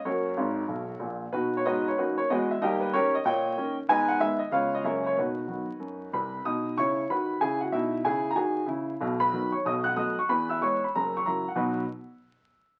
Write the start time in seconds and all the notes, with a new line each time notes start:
0.05 F#2 A#3 F#4 A#4 C#5
0.37 G#1 G#2
0.68 B1 B2
1.00 A#1 A#2
1.32 B2 D#4 F#4 B4
1.57 C#5
1.65 G#2 B3 F#4 B4 D#5
1.88 C#5
1.98 F#2 A#3 D#4 F#4 B4
2.18 C#5
2.30 E2 G#3 F#4 B4 D#5
2.51 E5
2.62 D#2 G3 G4 A#4 D#5
2.80 B4
2.93 D#3 A#3 C#4 G4 A#4 C#5
3.15 D#5
3.25 A#2 C#5 D#5 G5
3.57 D#3 A#3 C#4
3.89 G#2 B3 B4 D#5 G#5
4.08 F#5
4.20 D#3 G#3 B3 E5
4.39 D#5
4.51 C#3 G#3 B3 F4 B4 C#5 F5
4.75 D#5
4.84 F#2 C#3 G#3 A#3 A#4 C#5 E5
5.06 C#5
5.17 B2 D#4 F#4 B4
5.47 D#3 F#3 B3
5.80 F#2
6.13 C2 C3 B4 B5
6.45 B2 D#4 D#5 D#6
6.77 C#3 E4 C#5 C#6
7.10 D#3 F#4 B4 B5
7.41 C#3 E4 G#4 G#5
7.61 F#4 F#5
7.72 B2 D#4 E4 E5
8.04 C#3 E4 G#4 G#5
8.31 A#5
8.36 D#3 F#4 G#4 G#5
8.66 C#3 E4
9.01 B1 B2
9.20 B4 B5
9.33 D#3 F#3 B3
9.52 C#5 C#6
9.65 B1 B2 D#5 D#6
9.84 F#5 F#6
9.96 F#3 A3 B3 D#5 D#6
10.19 C#6
10.29 E2 E3 B4 B5
10.49 E5 E6
10.61 E3 G#3 B3 C#5 C#6
10.84 B5
10.95 F#1 F#2 A#4 A#5
11.17 C#6
11.26 C#3 F#3 E4 A#4 A#5
11.48 F#5
11.56 B2 F#3 D#4 F#4 B4 D#5 B5